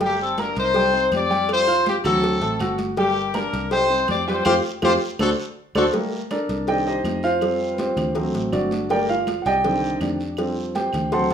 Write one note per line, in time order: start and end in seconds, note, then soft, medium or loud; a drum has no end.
0.00 0.51 G1 medium
0.00 0.31 G3 medium
0.00 0.19 A#3 medium
0.00 0.32 G4 medium
0.00 0.32 G5 medium
0.00 cowbell loud
0.00 high conga soft
0.00 long guiro medium
0.04 0.20 G4 loud
0.20 0.38 C4 medium
0.20 0.38 A4 loud
0.20 high conga soft
0.38 0.69 A#3 medium
0.38 0.57 D4 medium
0.38 0.69 A#4 medium
0.38 0.57 A#4 medium
0.38 0.69 A#5 medium
0.38 cowbell medium
0.38 high conga loud
0.38 short guiro medium
0.38 claves medium
0.55 1.08 C2 loud
0.55 1.10 D#4 medium
0.55 1.10 C5 loud
0.55 cowbell medium
0.55 short guiro medium
0.74 0.90 G3 medium
0.74 0.90 G4 medium
0.74 0.91 G5 medium
0.74 cowbell loud
0.74 high conga soft
0.74 long guiro medium
0.93 1.24 C4 medium
0.93 1.24 C5 medium
0.93 1.24 C6 medium
0.93 high conga soft
1.11 1.99 F2 loud
1.11 1.51 G4 medium
1.11 cowbell medium
1.11 high conga medium
1.11 short guiro medium
1.11 claves medium
1.16 1.51 D5 loud
1.30 1.61 G3 loud
1.30 1.61 G4 loud
1.30 1.61 G5 loud
1.30 high conga soft
1.30 short guiro medium
1.49 1.85 F4 medium
1.49 1.85 C5 loud
1.49 cowbell loud
1.49 high conga soft
1.49 long guiro medium
1.49 claves medium
1.67 1.98 F4 medium
1.67 1.98 F5 medium
1.67 1.98 F6 medium
1.67 high conga soft
1.86 1.96 C4 medium
1.86 1.96 G4 loud
1.86 cowbell medium
1.86 high conga loud
1.86 short guiro medium
2.04 2.39 D2 loud
2.04 2.35 F#3 loud
2.04 2.75 C4 medium
2.04 2.36 F#4 medium
2.04 2.75 A4 loud
2.04 2.36 F#5 loud
2.04 cowbell medium
2.04 low conga medium
2.04 short guiro medium
2.04 claves medium
2.22 cowbell loud
2.22 high conga soft
2.22 long guiro medium
2.41 2.59 A1 medium
2.41 2.57 A3 medium
2.41 2.57 A4 medium
2.41 2.57 A5 medium
2.41 cowbell medium
2.60 3.47 G1 loud
2.60 2.91 F#4 medium
2.60 2.91 F#5 medium
2.60 2.91 F#6 medium
2.60 cowbell medium
2.60 high conga medium
2.60 short guiro medium
2.60 claves medium
2.78 cowbell medium
2.78 high conga medium
2.78 short guiro medium
2.97 3.28 G3 medium
2.97 3.33 A#3 medium
2.97 3.28 G4 loud
2.97 3.33 G4 loud
2.97 3.28 G5 medium
2.97 cowbell loud
2.97 long guiro medium
3.16 high conga soft
3.34 3.65 A#3 medium
3.34 3.70 D4 medium
3.34 3.65 A#4 medium
3.34 3.70 A#4 loud
3.34 3.65 A#5 medium
3.34 cowbell medium
3.34 high conga loud
3.34 short guiro medium
3.34 claves medium
3.53 4.05 C2 loud
3.53 cowbell medium
3.53 short guiro medium
3.71 3.87 G3 medium
3.71 4.06 D#4 medium
3.71 3.87 G4 medium
3.71 4.06 C5 loud
3.71 3.87 G5 medium
3.71 cowbell loud
3.71 high conga soft
3.71 long guiro medium
3.90 4.20 C4 medium
3.90 4.21 C5 medium
3.90 4.21 C6 medium
3.90 high conga soft
4.08 4.43 F2 medium
4.08 4.26 G4 medium
4.08 4.26 D5 loud
4.08 cowbell medium
4.08 high conga medium
4.08 short guiro medium
4.08 claves medium
4.27 4.43 G3 loud
4.27 4.44 F4 medium
4.27 4.43 G4 loud
4.27 4.44 C5 loud
4.27 4.43 G5 loud
4.27 short guiro medium
4.45 4.59 F2 loud
4.45 4.54 F4 loud
4.45 4.58 F4 loud
4.45 4.54 G4 loud
4.45 4.57 G4 loud
4.45 4.54 C5 loud
4.45 4.58 C5 loud
4.45 cowbell loud
4.45 high conga loud
4.45 long guiro loud
4.45 claves loud
4.82 4.96 F2 loud
4.82 4.94 F4 loud
4.82 4.92 F4 loud
4.82 4.94 G4 loud
4.82 4.92 G4 loud
4.82 4.94 C5 loud
4.82 4.93 C5 loud
4.82 cowbell loud
4.82 high conga loud
4.82 long guiro loud
4.82 claves loud
5.19 5.33 D2 loud
5.19 5.29 D4 loud
5.19 5.30 F#4 loud
5.19 5.32 A4 loud
5.19 5.30 A4 loud
5.19 5.32 C5 loud
5.19 5.32 D5 loud
5.19 cowbell loud
5.19 high conga loud
5.19 long guiro loud
5.19 claves loud
5.75 5.89 D2 loud
5.75 5.85 D4 loud
5.75 5.85 F#4 loud
5.75 5.87 A4 loud
5.75 5.85 A4 loud
5.75 5.87 C5 loud
5.75 5.87 D5 loud
5.75 cowbell loud
5.75 high conga loud
5.75 long guiro loud
5.75 claves loud
5.93 6.18 G3 medium
5.93 6.19 A3 medium
5.93 6.19 A#3 medium
5.93 cowbell loud
5.93 high conga soft
5.93 long guiro medium
6.12 high conga soft
6.31 6.66 D4 medium
6.31 6.66 A4 medium
6.31 6.66 A#4 medium
6.31 6.65 D5 medium
6.31 cowbell medium
6.31 high conga loud
6.31 short guiro medium
6.31 claves medium
6.49 7.01 C2 loud
6.49 cowbell medium
6.49 short guiro medium
6.67 6.93 D#3 medium
6.67 6.93 C4 medium
6.67 6.93 D4 medium
6.67 6.86 G4 medium
6.67 6.86 D5 medium
6.67 6.86 D#5 medium
6.67 6.86 G5 loud
6.67 cowbell loud
6.67 high conga soft
6.67 long guiro medium
6.87 7.22 D#4 medium
6.87 7.21 G4 medium
6.87 7.22 C5 medium
6.87 7.21 D#5 medium
6.87 high conga soft
7.04 7.91 F2 medium
7.04 cowbell medium
7.04 high conga medium
7.04 short guiro medium
7.04 claves medium
7.23 7.76 F4 medium
7.23 7.75 C5 medium
7.23 7.75 F5 loud
7.23 high conga soft
7.23 short guiro medium
7.41 7.94 F3 medium
7.41 7.95 G3 medium
7.41 7.78 C4 medium
7.41 cowbell loud
7.41 long guiro medium
7.41 claves medium
7.61 high conga soft
7.74 7.77 B4 soft
7.78 8.15 C4 medium
7.78 8.14 F4 medium
7.78 8.13 G4 medium
7.78 8.31 C5 medium
7.78 cowbell medium
7.78 high conga loud
7.78 short guiro medium
7.96 8.31 D2 loud
7.96 cowbell medium
7.96 low conga medium
7.96 short guiro medium
7.96 claves medium
8.15 8.68 F#3 medium
8.15 8.69 A3 medium
8.15 8.69 C4 medium
8.15 cowbell loud
8.15 high conga soft
8.15 low conga medium
8.15 long guiro medium
8.34 8.52 A1 medium
8.34 cowbell medium
8.34 high conga soft
8.52 9.40 G1 loud
8.52 8.88 D4 medium
8.52 8.87 F#4 medium
8.52 8.87 A4 medium
8.52 8.87 D5 medium
8.52 cowbell medium
8.52 high conga medium
8.52 short guiro medium
8.52 claves medium
8.71 cowbell medium
8.71 high conga medium
8.71 short guiro medium
8.89 9.15 G3 medium
8.89 9.15 A3 medium
8.89 9.15 A#3 medium
8.89 9.09 G4 medium
8.89 9.09 A#4 medium
8.89 9.09 D5 medium
8.89 9.08 G5 loud
8.89 cowbell loud
8.89 long guiro medium
9.09 9.44 F4 medium
9.09 9.44 F5 loud
9.09 high conga soft
9.27 cowbell medium
9.27 high conga loud
9.27 short guiro medium
9.27 claves medium
9.42 9.97 C2 loud
9.42 9.45 F#5 medium
9.42 cowbell medium
9.42 short guiro medium
9.46 9.98 G4 medium
9.46 9.98 D5 medium
9.46 9.98 D#5 medium
9.46 9.98 G5 loud
9.64 10.18 D3 medium
9.64 10.17 D#3 medium
9.64 10.17 C4 medium
9.64 cowbell loud
9.64 high conga soft
9.64 long guiro medium
9.83 high conga soft
10.01 10.88 F2 medium
10.01 10.53 D4 soft
10.01 10.53 G4 soft
10.01 10.53 D5 medium
10.01 cowbell medium
10.01 high conga medium
10.01 short guiro medium
10.01 claves medium
10.20 short guiro medium
10.37 10.91 F3 medium
10.37 10.91 G3 medium
10.37 10.92 C4 medium
10.37 cowbell loud
10.37 high conga soft
10.37 long guiro medium
10.37 claves medium
10.57 high conga soft
10.75 11.10 G4 medium
10.75 11.10 C5 medium
10.75 11.10 G5 medium
10.75 cowbell medium
10.75 high conga loud
10.75 short guiro medium
10.93 11.28 D2 loud
10.93 cowbell medium
10.93 low conga medium
10.93 short guiro medium
10.93 claves medium
11.12 11.34 F#3 medium
11.12 11.34 A3 soft
11.12 11.34 C4 medium
11.12 11.31 C5 medium
11.12 11.30 F#5 medium
11.12 11.30 A5 medium
11.12 11.31 C6 loud
11.12 cowbell loud
11.12 high conga soft
11.12 low conga medium
11.12 long guiro medium
11.30 11.34 A1 medium
11.30 cowbell medium